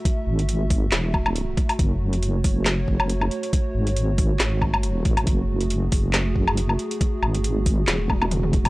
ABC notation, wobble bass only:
X:1
M:4/4
L:1/8
Q:"Swing 16ths" 1/4=138
K:F#m
V:1 name="Wobble bass" clef=bass
z G,,,3 E,,,3 z | F,,,3 F,,,2 F,,,2 z | z G,,,3 G,,,3 A,,, | F,,,3 F,,,2 F,,,2 z |
z G,,,3 E,,,4 |]